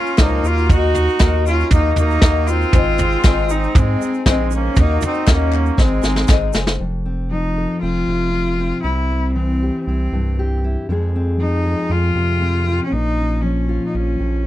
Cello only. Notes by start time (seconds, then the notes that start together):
Already playing: F4
0.20 D#4
0.46 F4
0.72 F#4
1.47 F4
1.73 D#4
1.97 D#4
2.46 F4
3.50 D#4
3.76 C4
4.28 C4
4.53 C#4
4.80 D#4
5.06 D#4
5.31 C#4
5.82 C4
7.31 D#4
7.81 F4
8.82 E4
9.33 C4
9.85 C4
11.40 D#4
11.90 F4
12.84 C#4
12.92 D#4
13.41 C#4
13.86 D#4
13.95 C#4